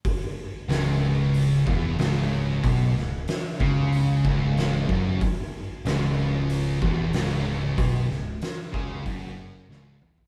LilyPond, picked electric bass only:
\new Staff \with { instrumentName = "Picked electric bass" } { \clef bass \time 4/4 \key cis \minor \tempo 4 = 93 r4 cis,,4. e,,8 cis,,4 | b,,8 cis,,8 r8 cis,4 cis,,4 fis,,8 | r4 cis,,4. e,,8 cis,,4 | b,,8 cis,,8 r8 cis,8 fis,,4 cis,,8 e,,8 | }